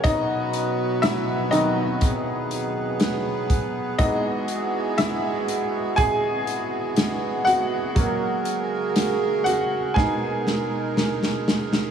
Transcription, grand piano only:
<<
  \new Staff \with { instrumentName = "Grand piano" } { \time 4/4 \key e \lydian \tempo 4 = 60 <dis' dis''>4 <e' e''>8 dis''2 r8 | <dis' dis''>4 <e' e''>4 <gis' gis''>4. <fis' fis''>8~ | <fis' fis''>4. <fis' fis''>8 <gis' gis''>4. r8 | }
  \new Staff \with { instrumentName = "Grand piano" } { \time 4/4 \key e \lydian r4. <dis fis dis'>2~ <dis fis dis'>8 | <e gis b>4. r2 r8 | <fis ais cis'>2 <gis b dis'>8 r4. | }
>>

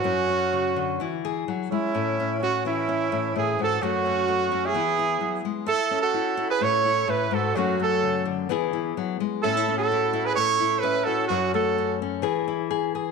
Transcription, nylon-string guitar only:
\new Staff \with { instrumentName = "Nylon-string guitar" } { \time 4/4 \key a \major \tempo 4 = 128 << { cis'8 cis'4. e'8 gis'4. | cis'8 cis'8 cis'8 cis'8 cis'8 cis'4. | <fis a cis'>8 cis'8 a8 cis'8 <b e'>8 e'4. | r8 cis'8 e'8 e'4 e'4. |
<fis a cis'>8 a4. <b e' gis'>8 e'4. | cis'16 e'16 cis'8 e'8 e'4 e'8 cis'8 e'8 | cis'8 a8 cis'8 cis'8 gis'8 e'8 gis'8 gis'8 | } \\ { fis,4 cis8 d8 e4 fis8 gis8 | a,4. e4 a,8 a,8 gis,8 | fis,4. fis8 e4 fis8 gis8 | r2 a,4 a,8 gis,8 |
fis,4 cis8 d8 e4 fis8 gis8 | a,2 a,2 | fis,2 e2 | } >> }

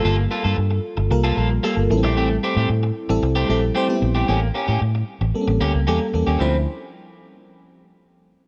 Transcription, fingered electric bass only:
\new Staff \with { instrumentName = "Fingered electric bass" } { \clef bass \time 4/4 \key d \minor \tempo 4 = 113 g,,8 r16 g,16 g,8 r16 g,,16 c,8 bes,,8 r16 g,,16 a,,16 bes,,16 | a,,8 r16 a,16 a,8 r16 a,,16 c,8 bes,,8 r8 bes,,8 | a,,8 r16 a,16 a,8 r16 a,,16 r16 a,,16 d,16 cis,16 e,16 r16 e,16 ees,16 | d,8 r2. r8 | }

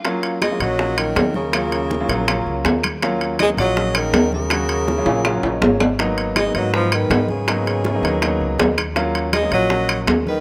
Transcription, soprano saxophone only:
\new Staff \with { instrumentName = "Soprano saxophone" } { \time 4/4 \key ees \minor \tempo 4 = 162 r4 ees''8 ees''4 bes'4 bes'8~ | bes'2.~ bes'8 r8 | r4 ees''8 ees''4 bes'4 bes'8~ | bes'2.~ bes'8 r8 |
r4 ees''8 ees''8 ces''8 ces''4 aes'8~ | aes'2.~ aes'8 r8 | r4 ees''8 ees''4. r8 ces''8 | }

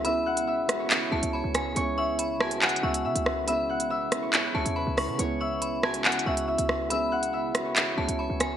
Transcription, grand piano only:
\new Staff \with { instrumentName = "Grand piano" } { \time 4/4 \key cis \minor \tempo 4 = 140 <gis b cis' e'>4 r8 <gis b cis' fis'>8. r16 <gis b cis' e'>4 r8 | <gis b cis' e'>4 r8 <gis b cis' fis'>16 <gis b cis' fis'>8 r16 <gis b cis' fis'>4 r8 | <gis b cis' e'>4 r8 <gis b cis' e'>8. r16 <gis b cis' e'>4 r8 | <gis b cis' e'>4 r8 <gis b cis' fis'>16 <gis b cis' e'>8 r16 <gis b cis' fis'>4 r8 |
<gis b cis' e'>4 r8 <gis b cis' fis'>8. r16 <gis b cis' e'>4 r8 | }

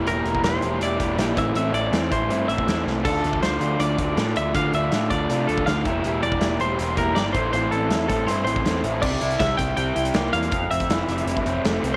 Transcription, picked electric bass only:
\new Staff \with { instrumentName = "Picked electric bass" } { \clef bass \time 4/4 \key d \minor \tempo 4 = 160 e,,8 e,,8 e,,8 e,,8 e,,8 e,,8 bes,,8 a,,8 | a,,8 a,,8 e,8 a,,8 g,8 a,,8 e,8 c,8 | d,8 d,8 d,8 d,8 d,8 d,8 a,8 d,8 | d,8 d,8 a,8 d,8 c8 d,8 d,8 e,,8 |
e,,8 e,,8 e,,8 e,,8 e,,8 e,,8 g,,8 a,,8 | a,,8 a,,8 e,8 a,,8 g,8 a,,8 e,8 a,,8 | c,8 c,8 c,8 c,8 c,8 c,8 c,8 e,8 | f,,8 f,,8 f,,8 f,,8 f,,8 f,,8 f,,8 c,8 | }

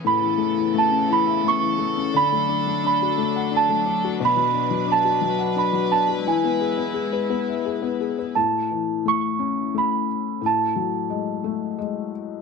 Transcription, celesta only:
\new Staff \with { instrumentName = "Celesta" } { \time 3/4 \key a \major \tempo 4 = 87 b''4 a''8 b''8 cis'''4 | b''4 b''4 a''8. r16 | b''4 a''4 b''8 a''8 | gis''2 r4 |
a''4 cis'''4 b''4 | a''2~ a''8 r8 | }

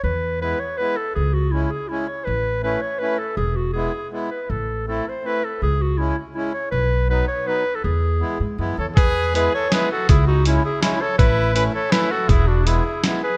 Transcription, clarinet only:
\new Staff \with { instrumentName = "Clarinet" } { \time 3/4 \key e \major \tempo 4 = 162 b'4 b'8 cis''8 b'8 a'8 | gis'8 fis'8 e'8 gis'8 e'8 cis''8 | b'4 b'8 cis''8 b'8 a'8 | gis'8 fis'8 gis'4 r8 b'8 |
a'4 a'8 c''8 b'8 a'8 | gis'8 fis'8 e'8 r8 e'8 cis''8 | b'4 b'8 cis''8 b'8. a'16 | gis'2 r8 cis''8 |
b'4 b'8 cis''8 b'8 a'8 | gis'8 fis'8 e'8 gis'8 e'8 cis''8 | b'4 b'8 cis''8 b'8 a'8 | gis'8 fis'8 gis'4 r8 b'8 | }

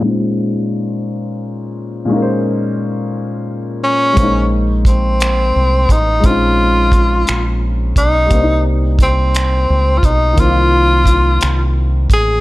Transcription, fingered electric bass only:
\new Staff \with { instrumentName = "Fingered electric bass" } { \clef bass \time 6/8 \key bes \dorian \tempo 4. = 58 r2. | r2. | bes,,2 c,8 a,,8 | bes,,4. bes,,4 ces,8 |
c,2 des,8 ces,8 | c,4. c,4 a,,8 | }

